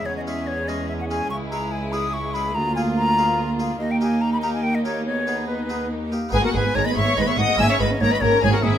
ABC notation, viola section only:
X:1
M:3/4
L:1/16
Q:1/4=144
K:C#dor
V:1 name="Viola section"
G,12 | [K:G#m] G,12 | A,12- | A,12 |
B,8 A,2 z2 | G, B, G, B, G, B, G, B, G, B, G, B, | A, C A, C A, C A, C A, C A, C |]